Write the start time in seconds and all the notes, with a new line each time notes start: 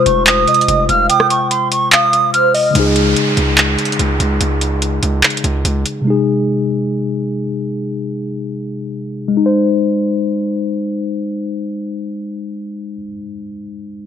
Already playing: C3 G#3 F4 C5
0.06 F1 C#6, closed hi-hat
0.26 D#6, clap, closed hi-hat
0.48 D#5, closed hi-hat
0.54 closed hi-hat
0.61 closed hi-hat
0.68 F1, closed hi-hat
0.89 F1 F5 F6, closed hi-hat
1.09 G5 D#6, closed hi-hat
1.20 cross-stick
1.30 C#6, closed hi-hat
1.50 C6, closed hi-hat
1.72 C#6, closed hi-hat
1.92 F5 D#6, clap, closed hi-hat
2.13 closed hi-hat
2.33 C5 F6, closed hi-hat
2.54 D#5, open hi-hat
2.71 C#3 G#3
2.75 C#2 D#4, closed hi-hat, downlifter
2.80 G#4
2.96 closed hi-hat
3.16 closed hi-hat
3.37 C#2, closed hi-hat
3.58 clap, closed hi-hat
3.79 closed hi-hat
3.85 closed hi-hat
3.92 closed hi-hat
3.99 C#2, closed hi-hat
4.20 C#2, closed hi-hat
4.41 C#2, closed hi-hat
4.61 closed hi-hat
4.82 closed hi-hat
5.03 C#2, closed hi-hat
5.23 clap, closed hi-hat
5.30 closed hi-hat
5.37 closed hi-hat
5.44 C#2, closed hi-hat
5.65 C#2, closed hi-hat
5.86 closed hi-hat
6.01 C3 G#3
6.07 D#4 G#4
9.28 G#3
9.37 D#4
9.46 C5